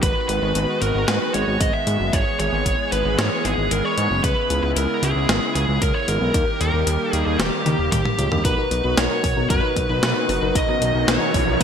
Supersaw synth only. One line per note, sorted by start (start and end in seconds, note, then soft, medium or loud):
0.00 2.09 D#3 medium
0.00 6.30 G#3 medium
0.00 6.30 B3 medium
0.00 2.11 F#4 medium
2.13 4.22 E3 medium
2.13 4.22 G#4 medium
4.24 6.32 C#3 medium
4.24 6.32 E4 medium
6.34 8.43 D#3 medium
6.34 8.43 G3 medium
6.34 8.43 A#3 medium
6.34 8.43 G4 medium
8.45 11.63 F#3 medium
8.45 10.53 B3 medium
8.45 11.63 F#4 medium
10.55 11.63 C#4 medium